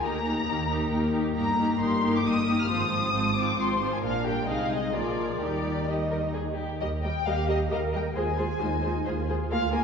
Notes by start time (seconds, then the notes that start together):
0.01 D#2 A#3 D#4 G4 A#4 A#5
0.23 A#3 D#4 G4 A#4
0.46 D#2 A#3 D#4 G4 A#4
0.68 A#3 D#4 G4 A#4
0.89 D#2 A#3 D#4 G4 A#4
1.11 A#3 D#4 G4 A#4
1.34 G1 G2 A#3 D#4 G4 A#4 A#5
1.57 A#3 D#4 G4 A#4
1.79 G1 G2 A#3 D#4 G4 A#4 C6
2.02 A#3 D#4 G4 A#4
2.16 D6
2.24 G1 G2 A#3 D#4 G4 A#4 D#6
2.45 A#3 D#4 G4 A#4
2.61 F6
2.69 G#1 G#2 F3 C4 F4 C5 D#6
2.90 F3 C4 F4 C5
3.13 G#1 G#2 F3 C4 F4 C5
3.36 F3 C4 F4 C5 D6
3.58 G#1 G#2 F3 C4 F4 C5 C6
3.81 F3 C4 F4 C5
3.94 G#5
4.03 A#1 A#2 F3 D4 F4 A#4 F5
4.26 G3 G4 G5
4.48 C2 C3 G#3 D#4 G#4 D#5 F5
4.72 D#5
4.94 A#1 A#2 F3 F4 G#4 A#4 D5
5.40 D#2 D#3 G3 D#4 G4 A#4 D5
5.87 G3 D#4 G4 D#5
6.11 A#4
6.35 G#4
6.57 G4
6.81 D#2 G3 G4 A#4 D#5
7.04 G3 G4 A#4 D#5 G5
7.26 D#2 G3 G4 A#4 D#5 F5
7.48 G3 G4 A#4 D#5
7.71 D#2 G3 G4 A#4 D#5 F5
7.93 G3 G4 A#4 D#5 G5
8.16 D#2 G#3 F4 G#4 C5 G#5
8.37 G#3 F4 G#4 C5
8.60 D#2 G#3 D#4 F4 G#4 C5
8.82 G#3 F4 G#4 C5
9.06 D#2 G#3 F4 G#4 C5
9.28 G#3 F4 G#4 C5
9.50 D2 A#3 F4 G#4 A#4 F5
9.72 A#3 F4 G#4 A#4 G#5